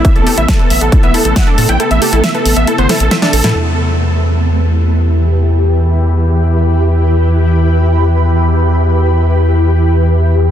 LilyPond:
<<
  \new Staff \with { instrumentName = "Supersaw synth" } { \time 4/4 \key e \minor \tempo 4 = 137 e''16 a'16 a'16 e''16 a'16 a'16 e''16 a'16 a'16 e''16 a'16 a'16 fis''16 a'16 a'16 g''16 | a'16 e''16 a'16 a'16 e''16 a'16 a'16 e''16 a'16 c''16 a'16 a'16 r16 a'16 a'16 a'16 | r1 | r1 |
r1 | r1 | }
  \new Staff \with { instrumentName = "Synth pluck" } { \time 4/4 \key e \minor e'16 r16 g'16 e'16 e''16 b'16 r16 b16 e'16 b16 e'16 r16 e''16 d'16 a'16 e'16 | e'16 r16 g'16 e'16 e''16 b'16 r16 b16 e'16 b16 e'16 r16 e''16 d'16 a'16 e'16 | r1 | r1 |
r1 | r1 | }
  \new Staff \with { instrumentName = "Ambient pad" } { \time 4/4 \key e \minor <c a b>1~ | <c a b>1 | <e e' g' b'>1~ | <e e' g' b'>1~ |
<e e' g' b'>1~ | <e e' g' b'>1 | }
  \new Staff \with { instrumentName = "Analog synth bass" } { \clef bass \time 4/4 \key e \minor r16 a,,16 r16 a,,16 r8 a,,16 a,,16 r16 a,,16 r16 a,,16 r8 a,16 a,,16 | r16 a,,16 r16 a,,16 r8 a,,16 a,,16 r16 g,,16 r16 a,,16 r8 a,,16 a,16 | e,1~ | e,1~ |
e,1~ | e,1 | }
  \new DrumStaff \with { instrumentName = "Drums" } \drummode { \time 4/4 <hh bd>16 hh16 hho16 hh16 <hh bd sn>16 hh16 hho16 hh16 <hh bd>16 hh16 hho16 hh16 <hh bd sn>16 hh16 hho16 hh16 | hh16 hh16 hho16 hh16 <hh sn>16 hh16 hho16 hh16 hh16 hh16 <hho sn>16 hh16 <hh sn>16 <hh sn>16 hho16 <hh sn>16 | r4 r4 r4 r4 | r4 r4 r4 r4 |
r4 r4 r4 r4 | r4 r4 r4 r4 | }
>>